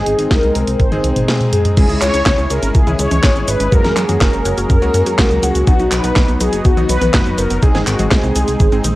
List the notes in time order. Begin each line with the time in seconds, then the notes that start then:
Already playing: G#3 C4 D#4 G#4
0.06 G#1, closed hi-hat
0.19 G#1 G#3 C4 D#4 G#4, closed hi-hat
0.31 C2 A#4, kick, snare, closed hi-hat
0.43 C2, closed hi-hat
0.55 C2 G#3 C4 D#4 G#4, closed hi-hat
0.67 C2, closed hi-hat
0.80 G#1 C5, kick, closed hi-hat, high tom
0.92 G#1 G#3 C4 D#4 G#4, closed hi-hat, high tom
1.04 C2, closed hi-hat
1.16 G#1, closed hi-hat, mid tom
1.28 G#3 C4 D#4 G#4, snare, closed hi-hat, mid tom
1.41 closed hi-hat, mid tom
1.53 G#4, closed hi-hat, mid tom
1.65 closed hi-hat, mid tom
1.77 C#2 G#3 C#4 E4 G#4, kick, closed hi-hat, crash, cabasa
1.89 C#2 E4, closed hi-hat, cabasa
2.01 C#2 G#3 C#5, clap, closed hi-hat, cabasa
2.14 C#2 G#3 C#4 E4 G#4, closed hi-hat, cabasa
2.26 C#2 C#4, kick, snare, clap, closed hi-hat, cabasa
2.38 C#2 C#4, closed hi-hat, cabasa
2.50 C#2 G#3 C#4 E4 G#4 A#4 C#5, closed hi-hat, cabasa
2.63 G#1 C#4, closed hi-hat, cabasa
2.74 C#2 C#4 G#4, kick, closed hi-hat, cabasa
2.87 C#2 G#3 C#4 E4 G#4, closed hi-hat, high tom, cabasa
2.99 C#2 G#3 C#5, closed hi-hat, cabasa
3.11 C#2 C#4, closed hi-hat, high tom, cabasa
3.23 G#1 G#3 C#4 E4 G#4, kick, snare, clap, closed hi-hat, cabasa
3.36 G#1 C#4, closed hi-hat, cabasa
3.47 G#1 B4 C#5, closed hi-hat, cabasa
3.60 G#1 C#4, closed hi-hat, cabasa
3.72 F#2 F#3 G#3 A#3 C#4 F#4 G#4 A#4, kick, closed hi-hat, cabasa
3.84 F#2 A#4, snare, closed hi-hat, high tom, cabasa
3.96 F#2 C#4 G#4, clap, closed hi-hat, cabasa
4.09 F#2 G#3 A#3 C#4 F#4, closed hi-hat, high tom, cabasa
4.21 F#1 F#4 A#4, kick, snare, clap, closed hi-hat, cabasa
4.33 F#1 F#4, closed hi-hat, cabasa
4.45 F#1 G#3 A#3 C#4 F#4 F#5, closed hi-hat, cabasa
4.58 F#1 F#4, closed hi-hat, cabasa
4.70 F#2 F#4, kick, closed hi-hat, cabasa
4.82 C#2 G#3 A#3 C#4 F#4 A#4, closed hi-hat, cabasa
4.94 F#2 C#4, closed hi-hat, cabasa
5.06 F#2 F#4, closed hi-hat, cabasa
5.19 C#2 G#3 A#3 C#4 F#4, kick, snare, clap, closed hi-hat, cabasa
5.31 C#2 F#4, closed hi-hat, cabasa
5.42 C#2 F#4 F#5, closed hi-hat, cabasa
5.55 C#2 F#4, closed hi-hat, cabasa
5.67 B1 F#3 B3 D#4 F#4, kick, closed hi-hat, cabasa
5.80 B1 D#4, closed hi-hat, cabasa
5.91 B1 F#3 B4, clap, closed hi-hat, cabasa
6.04 B1 F#3 B3 D#4 F#4, closed hi-hat, cabasa
6.16 B1 B3, kick, snare, clap, closed hi-hat, cabasa
6.28 B1 B3, closed hi-hat, cabasa
6.40 B1 F#3 B3 D#4 F#4 G#4 B4, closed hi-hat, cabasa
6.53 F#1 B3, closed hi-hat, cabasa
6.65 B1 B3 F#4, kick, closed hi-hat, cabasa
6.77 B1 F#3 B3 D#4 F#4, closed hi-hat, high tom, cabasa
6.89 B1 F#3 B4, closed hi-hat, cabasa
7.01 B1 B3, closed hi-hat, high tom, cabasa
7.14 F#1 F#3 B3 D#4 F#4, kick, snare, clap, closed hi-hat, cabasa
7.26 F#1 B3, closed hi-hat, cabasa
7.38 F#1 A#4 B4, closed hi-hat, cabasa
7.50 F#1 B3, closed hi-hat, cabasa
7.62 C2 G#3 C4 D#4 G#4, kick, closed hi-hat, cabasa
7.75 G#1 C4, snare, closed hi-hat, high tom, cabasa
7.87 G#1 D#3 F#4, clap, closed hi-hat, cabasa
7.99 G#1 G#3 C4 D#4 G#4, closed hi-hat, high tom, cabasa
8.11 C2 G#3 G#4, kick, snare, clap, closed hi-hat, cabasa
8.23 C2 G#3, closed hi-hat, cabasa
8.36 C2 G#3 C4 D#4 G#4, closed hi-hat, cabasa
8.48 C2 G#3, closed hi-hat, cabasa
8.60 G#1 G#3, kick, closed hi-hat, cabasa
8.72 G#1 G#3 C4 D#4 G#4, closed hi-hat, cabasa
8.84 A#1 D#3, closed hi-hat, cabasa